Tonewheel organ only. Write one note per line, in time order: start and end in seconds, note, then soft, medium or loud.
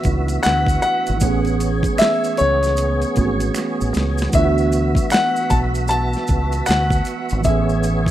0.00 1.18 B3 medium
0.00 1.18 F#4 medium
0.00 1.18 E5 medium
1.22 8.11 B3 medium
1.22 4.30 G#4 medium
1.22 4.30 C#5 medium
4.34 7.42 F#4 medium
4.34 7.42 E5 medium
7.46 8.11 G#4 medium
7.46 8.11 C#5 medium